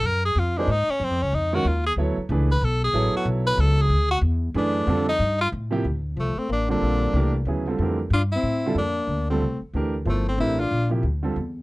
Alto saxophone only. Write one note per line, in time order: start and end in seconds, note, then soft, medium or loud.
6.16 6.39 F3 medium
6.37 6.48 A3 medium
6.49 6.68 A#3 medium
6.70 7.43 A#3 medium
8.14 8.22 D4 medium
8.35 8.75 C4 medium
8.78 9.26 A#3 medium
9.30 9.60 A3 medium
10.08 10.26 F3 medium
10.27 10.38 A3 medium
10.39 10.61 C4 medium
10.59 10.92 D4 medium